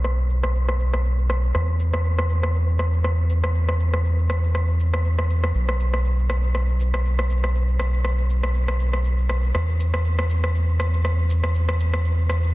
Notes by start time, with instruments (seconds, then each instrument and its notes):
Already playing: analog synth bass B1
0.04 cross-stick, cabasa
0.19 cabasa
0.30 cabasa
0.43 cross-stick, cabasa
0.55 cabasa
0.69 cross-stick, cabasa
0.80 cabasa
0.94 cross-stick, cabasa
1.05 cabasa
1.19 cabasa
1.30 cross-stick, cabasa
1.44 cabasa
1.55 analog synth bass E2, cross-stick, cabasa
1.69 cabasa
1.80 cabasa
1.94 cross-stick, cabasa
2.05 cabasa
2.18 cross-stick, cabasa
2.29 cabasa
2.43 cross-stick, cabasa
2.55 cabasa
2.68 cabasa
2.79 cross-stick, cabasa
2.93 cabasa
3.04 cross-stick, cabasa
3.19 cabasa
3.30 cabasa
3.44 cross-stick, cabasa
3.55 cabasa
3.69 cross-stick, cabasa
3.80 cabasa
3.94 cross-stick, cabasa
4.05 cabasa
4.19 cabasa
4.30 cross-stick, cabasa
4.44 cabasa
4.55 cross-stick, cabasa
4.69 cabasa
4.80 cabasa
4.94 cross-stick, cabasa
5.05 cabasa
5.19 cross-stick, cabasa
5.30 cabasa
5.44 cross-stick, cabasa
5.55 analog synth bass B1, cabasa
5.69 cross-stick, cabasa
5.80 cabasa
5.94 cross-stick, cabasa
6.05 cabasa
6.19 cabasa
6.30 cross-stick, cabasa
6.44 cabasa
6.55 cross-stick, cabasa
6.69 cabasa
6.80 cabasa
6.94 cross-stick, cabasa
7.05 cabasa
7.19 cross-stick, cabasa
7.30 cabasa
7.44 cross-stick, cabasa
7.55 cabasa
7.69 cabasa
7.79 cross-stick, cabasa
7.94 cabasa
8.05 cross-stick, cabasa
8.19 cabasa
8.30 cabasa
8.43 cross-stick, cabasa
8.55 cabasa
8.68 cross-stick, cabasa
8.80 cabasa
8.93 cross-stick, cabasa
9.05 cabasa
9.19 cabasa
9.29 cross-stick, cabasa
9.44 cabasa
9.55 analog synth bass E2, cross-stick, cabasa
9.69 cabasa
9.80 cabasa
9.94 cross-stick, cabasa
10.05 cabasa
10.19 cross-stick, cabasa
10.30 cabasa
10.44 cross-stick, cabasa
10.55 cabasa
10.69 cabasa
10.80 cross-stick, cabasa
10.94 cabasa
11.05 cross-stick, cabasa
11.19 cabasa
11.30 cabasa
11.44 cross-stick, cabasa
11.55 cabasa
11.69 cross-stick, cabasa
11.80 cabasa
11.94 cross-stick, cabasa
12.05 cabasa
12.19 cabasa
12.29 cross-stick, cabasa
12.44 cabasa